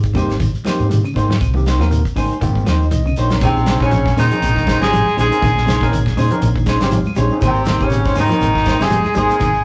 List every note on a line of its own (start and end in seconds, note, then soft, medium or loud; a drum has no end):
0.00 0.17 G#2 medium
0.00 kick medium
0.00 closed hi-hat soft
0.05 shekere soft
0.14 0.37 G#1 medium
0.14 0.31 C#3 medium
0.14 0.32 A#3 medium
0.14 0.34 A#3 medium
0.14 0.34 C4 medium
0.14 0.32 D#4 medium
0.14 0.34 G4 medium
0.14 0.32 G4 soft
0.14 0.33 C5 medium
0.14 kick medium
0.14 closed hi-hat medium
0.14 high conga medium
0.14 low conga medium
0.14 claves medium
0.14 shekere medium
0.30 snare soft
0.30 closed hi-hat soft
0.30 shekere soft
0.40 0.53 G#1 medium
0.40 0.57 D#3 medium
0.40 kick medium
0.40 closed hi-hat medium
0.40 low conga medium
0.40 shekere medium
0.55 closed hi-hat soft
0.55 shekere soft
0.65 0.82 F3 medium
0.65 0.82 A#3 medium
0.65 0.97 A#3 medium
0.65 0.97 C4 medium
0.65 0.83 D#4 medium
0.65 0.83 G4 medium
0.65 0.97 G4 medium
0.65 0.83 C5 medium
0.65 muted fingered electric bass stroke soft
0.65 snare medium
0.65 closed hi-hat soft
0.65 high conga medium
0.65 claves medium
0.65 shekere medium
0.80 1.01 G#2 medium
0.80 shekere soft
0.89 1.00 D#3 medium
0.89 closed hi-hat medium
0.89 high conga medium
0.89 shekere medium
1.05 1.21 C#3 medium
1.05 closed hi-hat soft
1.05 claves medium
1.05 shekere soft
1.14 1.37 G#2 loud
1.14 1.32 A#3 medium
1.14 1.33 D#4 medium
1.14 1.33 G4 medium
1.14 1.33 C5 medium
1.14 kick medium
1.14 closed hi-hat soft
1.14 low conga medium
1.14 shekere medium
1.28 1.38 F3 medium
1.28 snare medium
1.28 high conga medium
1.28 shekere soft
1.41 1.80 C2 loud
1.41 kick medium
1.41 closed hi-hat medium
1.41 claves medium
1.41 shekere medium
1.54 1.71 D#3 medium
1.54 1.63 A#3 medium
1.54 1.63 C4 medium
1.54 1.64 G4 medium
1.54 high conga medium
1.54 shekere soft
1.66 1.83 A#3 medium
1.66 1.83 D#4 medium
1.66 1.83 G4 medium
1.66 1.84 C5 medium
1.66 snare medium
1.66 closed hi-hat soft
1.66 shekere medium
1.80 2.02 D#2 medium
1.80 1.87 F3 medium
1.80 2.02 A#3 medium
1.80 2.02 C4 medium
1.80 2.02 A#4 medium
1.80 snare soft
1.80 claves medium
1.80 shekere soft
1.91 2.08 D#3 medium
1.91 closed hi-hat medium
1.91 shekere medium
2.05 kick medium
2.05 closed hi-hat soft
2.05 shekere soft
2.16 2.29 G#1 medium
2.16 2.32 C#3 medium
2.16 2.33 A#3 soft
2.16 2.33 D#4 medium
2.16 2.33 G4 medium
2.16 2.34 C5 medium
2.16 2.40 G#5 medium
2.16 kick medium
2.16 open hi-hat medium
2.16 high conga medium
2.16 low conga medium
2.16 claves medium
2.16 shekere medium
2.31 closed hi-hat soft
2.31 shekere soft
2.41 2.63 G#2 medium
2.41 2.58 D#3 medium
2.41 2.73 A#3 medium
2.41 2.73 C4 medium
2.41 2.73 F4 loud
2.41 2.66 G5 medium
2.41 kick medium
2.41 closed hi-hat medium
2.41 low conga medium
2.41 shekere medium
2.55 kick medium
2.55 high conga medium
2.55 shekere soft
2.66 2.90 D#2 medium
2.66 2.83 F3 medium
2.66 2.83 A#3 medium
2.66 2.83 D#4 medium
2.66 2.83 G4 medium
2.66 2.84 C5 medium
2.66 2.91 D#5 medium
2.66 snare medium
2.66 closed hi-hat medium
2.66 high conga medium
2.66 claves medium
2.66 shekere medium
2.81 shekere soft
2.91 3.14 C2 medium
2.91 3.01 D#3 medium
2.91 3.16 D#5 medium
2.91 closed hi-hat medium
2.91 high conga medium
2.91 shekere medium
3.06 3.22 C#3 medium
3.06 low conga medium
3.06 claves medium
3.06 shekere soft
3.16 3.40 A#1 medium
3.16 3.34 A#3 medium
3.16 3.34 D#4 medium
3.16 3.34 G4 medium
3.16 3.34 C5 medium
3.16 3.41 C#5 medium
3.16 closed hi-hat soft
3.16 shekere medium
3.30 3.38 F3 medium
3.30 3.39 A#3 medium
3.30 3.39 C4 medium
3.30 3.40 A#4 medium
3.30 snare medium
3.30 closed hi-hat soft
3.30 low conga medium
3.30 shekere soft
3.41 3.75 A#1 loud
3.41 3.79 C3 medium
3.41 3.58 D#3 medium
3.41 3.79 C4 medium
3.41 3.59 C#4 medium
3.41 3.59 D#4 medium
3.41 3.59 G#4 medium
3.41 muted clean electric guitar stroke medium
3.41 kick medium
3.41 closed hi-hat medium
3.41 high conga soft
3.41 low conga medium
3.41 claves medium
3.41 shekere medium
3.56 shekere soft
3.66 3.83 C3 medium
3.66 3.83 C#4 medium
3.66 3.83 D#4 medium
3.66 3.83 G#4 medium
3.66 3.84 C5 medium
3.66 snare medium
3.66 closed hi-hat medium
3.66 high conga loud
3.66 shekere medium
3.80 4.12 A#1 loud
3.80 4.14 C#3 medium
3.80 3.98 C4 medium
3.80 4.15 C#4 medium
3.80 3.98 C#4 medium
3.80 3.99 D#4 medium
3.80 3.99 G#4 medium
3.80 kick medium
3.80 snare soft
3.80 claves medium
3.80 shekere soft
3.84 4.17 C#4 medium
3.91 4.08 F3 medium
3.91 closed hi-hat medium
3.91 high conga soft
3.91 shekere medium
4.06 kick medium
4.06 snare soft
4.06 shekere soft
4.17 4.29 A#2 medium
4.17 4.26 C#3 medium
4.17 4.78 D#3 medium
4.17 4.33 C#4 medium
4.17 4.34 D#4 medium
4.17 4.78 D#4 loud
4.17 4.79 D#4 medium
4.17 4.34 G#4 medium
4.17 4.34 C5 medium
4.17 open hi-hat medium
4.17 high conga medium
4.17 low conga medium
4.17 claves medium
4.17 shekere medium
4.31 4.48 F3 medium
4.31 4.48 C4 medium
4.31 4.48 C#4 medium
4.31 4.48 D#4 medium
4.31 4.48 G#4 medium
4.31 closed hi-hat soft
4.31 shekere soft
4.42 4.75 A#1 medium
4.42 closed hi-hat medium
4.42 high conga soft
4.42 shekere medium
4.55 4.72 D#3 medium
4.55 kick medium
4.55 snare soft
4.55 shekere soft
4.66 4.83 C#4 medium
4.66 4.83 D#4 medium
4.66 4.84 G#4 medium
4.66 4.84 C5 medium
4.66 kick medium
4.66 snare medium
4.66 closed hi-hat soft
4.66 high conga medium
4.66 claves medium
4.66 shekere medium
4.81 5.02 G#1 medium
4.81 4.88 C#3 medium
4.81 5.15 G#3 loud
4.81 4.97 C4 medium
4.81 4.98 C#4 medium
4.81 4.98 D#4 medium
4.81 4.98 G4 medium
4.81 5.16 G#4 loud
4.81 5.16 G#4 medium
4.81 snare medium
4.81 closed hi-hat soft
4.92 5.08 F3 medium
4.92 closed hi-hat medium
4.92 high conga medium
4.92 shekere medium
5.06 high conga medium
5.06 claves medium
5.06 shekere soft
5.16 5.29 A#1 medium
5.16 5.33 G3 medium
5.16 5.89 G#3 medium
5.16 5.33 C#4 medium
5.16 5.34 D#4 medium
5.16 5.34 G#4 medium
5.16 5.89 G#4 medium
5.16 5.34 C5 medium
5.16 closed hi-hat soft
5.16 low conga medium
5.16 shekere medium
5.21 5.90 G#4 loud
5.31 5.48 C4 medium
5.31 5.48 C#4 medium
5.31 5.48 D#4 medium
5.31 5.48 A#4 medium
5.31 closed hi-hat soft
5.31 shekere soft
5.41 5.75 A#1 loud
5.41 5.58 D#3 medium
5.41 kick medium
5.41 closed hi-hat medium
5.41 high conga soft
5.41 low conga medium
5.41 claves medium
5.41 shekere medium
5.57 snare soft
5.57 shekere soft
5.66 5.83 C3 medium
5.66 5.84 C#4 medium
5.66 5.84 D#4 medium
5.66 5.84 G#4 medium
5.66 5.84 C5 medium
5.66 snare medium
5.66 closed hi-hat medium
5.66 high conga loud
5.66 low conga medium
5.66 shekere medium
5.81 6.12 A#1 medium
5.81 5.98 C4 medium
5.81 5.98 C#4 medium
5.81 5.98 D#4 medium
5.81 5.98 A#4 loud
5.81 kick medium
5.81 snare soft
5.81 claves medium
5.81 shekere soft
5.92 6.08 D#3 medium
5.92 closed hi-hat medium
5.92 high conga soft
5.92 shekere loud
6.06 kick medium
6.06 snare soft
6.06 shekere soft
6.16 6.29 A#2 medium
6.16 6.26 C#3 medium
6.16 6.33 C#4 medium
6.16 6.34 D#4 medium
6.16 6.34 G#4 medium
6.16 6.34 C5 medium
6.16 open hi-hat medium
6.16 high conga medium
6.16 low conga medium
6.16 claves medium
6.16 shekere medium
6.31 6.48 F3 medium
6.31 6.48 C4 medium
6.31 6.48 C#4 medium
6.31 6.48 D#4 medium
6.31 6.48 A#4 loud
6.31 closed hi-hat medium
6.31 shekere soft
6.42 6.75 A#1 loud
6.42 closed hi-hat medium
6.42 high conga soft
6.42 shekere medium
6.56 6.72 D#3 medium
6.56 kick medium
6.56 shekere soft
6.66 6.81 C#4 medium
6.66 6.81 D#4 medium
6.66 6.81 G#4 medium
6.66 6.80 C5 medium
6.66 kick medium
6.66 snare medium
6.66 closed hi-hat medium
6.66 high conga medium
6.66 claves medium
6.66 shekere medium
6.80 7.02 G#1 medium
6.80 6.88 C#3 medium
6.80 6.98 C4 loud
6.80 6.98 C#4 medium
6.80 6.96 D#4 soft
6.80 6.98 D#4 medium
6.80 6.98 G4 medium
6.80 6.95 G#4 medium
6.80 6.95 C5 medium
6.80 snare medium
6.80 closed hi-hat medium
6.80 shekere soft
6.91 7.08 F3 medium
6.91 7.16 F5 medium
6.91 closed hi-hat medium
6.91 high conga medium
6.91 shekere medium
7.05 high conga medium
7.05 claves medium
7.05 shekere soft
7.15 7.29 A#1 medium
7.15 7.33 G3 medium
7.15 7.33 C#4 medium
7.15 7.33 D#4 medium
7.15 7.34 G#4 medium
7.15 7.34 C5 medium
7.15 7.41 C#5 medium
7.15 closed hi-hat medium
7.15 low conga medium
7.15 shekere medium
7.30 7.42 C4 medium
7.30 7.42 C#4 medium
7.30 7.43 D#4 medium
7.30 7.43 G#4 medium
7.30 shekere soft
7.41 7.75 G#1 loud
7.41 7.57 D#3 medium
7.41 7.58 A#3 medium
7.41 7.59 G4 medium
7.41 7.58 C5 medium
7.41 muted clean electric guitar stroke medium
7.41 kick medium
7.41 closed hi-hat medium
7.41 high conga soft
7.41 low conga medium
7.41 claves medium
7.41 shekere medium
7.46 7.84 C3 medium
7.46 7.87 C4 medium
7.46 7.86 C4 medium
7.55 shekere soft
7.65 7.83 D#3 medium
7.65 7.83 A#3 medium
7.65 7.83 D#4 medium
7.65 7.83 G4 medium
7.65 7.84 C5 medium
7.65 snare medium
7.65 closed hi-hat medium
7.65 high conga loud
7.65 low conga medium
7.65 shekere medium
7.80 8.11 G#1 medium
7.80 8.17 C#3 medium
7.80 7.97 A#3 medium
7.80 7.97 C4 medium
7.80 7.97 G4 medium
7.80 kick medium
7.80 claves medium
7.80 shekere soft
7.85 8.19 C#4 medium
7.85 8.18 C#4 medium
7.90 8.08 D#3 medium
7.90 closed hi-hat medium
7.90 high conga soft
7.90 shekere medium
8.04 8.16 D#4 soft
8.04 8.16 G4 soft
8.04 8.17 C5 medium
8.04 kick medium
8.04 snare soft
8.04 shekere soft
8.15 8.29 G#2 medium
8.15 8.25 C#3 medium
8.15 8.83 D#3 medium
8.15 8.33 A#3 medium
8.15 8.33 D#4 medium
8.15 8.84 D#4 medium
8.15 8.33 G4 medium
8.15 8.33 C5 medium
8.15 open hi-hat medium
8.15 high conga medium
8.15 low conga medium
8.15 claves medium
8.15 shekere medium
8.20 8.84 D#4 loud
8.29 8.46 F3 medium
8.29 8.47 A#3 medium
8.29 8.47 C4 medium
8.29 8.48 A#4 medium
8.29 closed hi-hat medium
8.29 shekere soft
8.41 8.75 G#1 loud
8.41 closed hi-hat medium
8.41 high conga soft
8.41 shekere medium
8.54 8.71 D#3 medium
8.54 kick medium
8.54 snare soft
8.54 shekere soft
8.65 8.83 A#3 medium
8.65 8.83 D#4 medium
8.65 8.83 G4 medium
8.65 8.83 C5 medium
8.65 kick medium
8.65 snare medium
8.65 closed hi-hat medium
8.65 high conga medium
8.65 claves medium
8.65 shekere medium
8.80 9.01 G1 medium
8.80 8.87 C#3 medium
8.80 9.16 G#3 medium
8.80 8.97 A#3 medium
8.80 8.98 C4 medium
8.80 8.98 G4 medium
8.80 9.17 G#4 medium
8.80 9.17 G#4 loud
8.80 snare medium
8.80 closed hi-hat medium
8.90 9.07 F3 medium
8.90 closed hi-hat medium
8.90 high conga medium
8.90 shekere medium
9.05 high conga medium
9.05 claves medium
9.05 shekere soft
9.14 9.28 G#1 medium
9.14 9.32 G3 medium
9.14 9.64 G#3 medium
9.14 9.32 A#3 medium
9.14 9.32 D#4 medium
9.14 9.64 G#4 loud
9.14 9.33 C5 medium
9.14 closed hi-hat soft
9.14 low conga medium
9.14 shekere medium
9.28 9.47 A#3 medium
9.28 9.47 C4 medium
9.28 9.47 A#4 medium
9.28 closed hi-hat medium
9.28 shekere soft
9.40 9.64 G#1 loud
9.40 9.57 D#3 medium
9.40 kick medium
9.40 closed hi-hat medium
9.40 high conga soft
9.40 low conga medium
9.40 claves medium
9.40 shekere medium
9.53 shekere soft